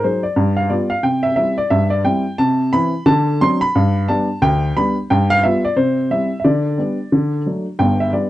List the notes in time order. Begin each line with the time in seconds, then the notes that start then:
0.04 F#3 D#4 G#4 C5
0.23 D5
0.36 G2
0.57 F5
0.69 G3 B3 F4 D5
0.90 F5
1.03 C3 G5
1.23 E5
1.36 G3 C4 E4 E5
1.58 D5
1.70 G2 E5
1.90 D5
2.04 G3 C4 E4 G5
2.38 C3 A5
2.73 E3 C4 E4 B5
3.06 D3 A5
3.41 F#3 C4 D4 C6
3.61 B5
3.75 G2
4.08 G3 B3 D4 A5
4.42 D2 G5
4.76 G3 B3 D4 B5
5.10 G2 G5
5.30 F5
5.43 G3 B3 F4 E5
5.65 D5
5.76 C3 C5
6.11 G3 C4 E4 E5
6.40 E5
6.44 D3 D5
6.78 G3 B3 D4
7.12 D3
7.46 F#3 A3 D4
7.79 G1 G2 G5
8.00 E5
8.13 G3 B3 D4 D5